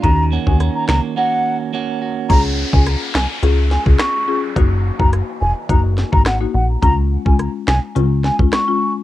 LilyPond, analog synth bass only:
\new Staff \with { instrumentName = "Analog synth bass" } { \clef bass \time 4/4 \key des \major \tempo 4 = 106 ees,8. ees,8 r16 des,16 r2 r16 | des,8. des,8 r16 c,16 r16 des,8. des,16 r4 | ges,,8. ges,,8 r16 f,,16 r16 ges,,8. aes,,8. bes,,8 | des,8. des,8 r16 c,16 r16 des,8. des,16 r4 | }